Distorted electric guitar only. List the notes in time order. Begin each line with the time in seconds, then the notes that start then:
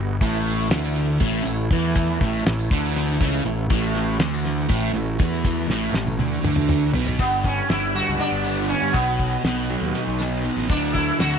Already playing: G2
0.21 A2
0.71 D3
1.21 A2
1.46 A2
1.72 E3
2.21 A2
2.46 A2
2.71 D3
3.20 C#3
3.45 A2
3.70 A2
4.19 D3
4.68 A2
4.94 A2
5.19 E3
5.70 A2
5.96 A2
6.20 D3
6.44 D3
6.94 B2
7.20 G2
7.69 D3
7.94 G3
8.19 D4
8.45 B3
8.70 D3
8.95 B2
9.44 B2
9.70 F#3
9.95 D#4
10.20 B3
10.45 B2
10.70 D3
11.19 D3